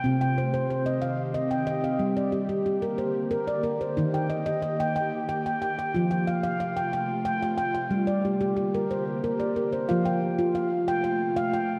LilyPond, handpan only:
<<
  \new Staff \with { instrumentName = "Handpan" } { \time 3/4 \key f \mixolydian \tempo 4 = 91 << { g''16 g''16 c''8 c''8 f''8. g''8 f''16~ | f''16 d''16 g'8 g'8 c''8. d''8 c''16~ | c''16 g''16 ees''8 ees''8 g''8. g''8 g''16~ | g''16 g''16 f''8 f''8 g''8. g''8 g''16~ |
g''16 d''16 g'8 g'8 c''8. d''8 c''16 | f''16 g''8. f''8. g''8. g''8 | } \\ { c'8 r16 c''8 ees''8 r16 ees''8 ees''8 | g8 r16 g'8 bes'8 r16 bes'8 bes'8 | ees'8 r16 ees''8 g''8 r16 g''8 g''8 | f'8 r16 f''8 g''8 r16 g''8 g''8 |
g8 r16 g'8 bes'8 r16 bes'8 bes'8 | f'8 r16 f'8 r16 g''8 r16 f''8 r16 | } >> }
  \new Staff \with { instrumentName = "Handpan" } { \clef bass \time 3/4 \key f \mixolydian c2. | r2. | ees2. | f2. |
r2. | f2. | }
>>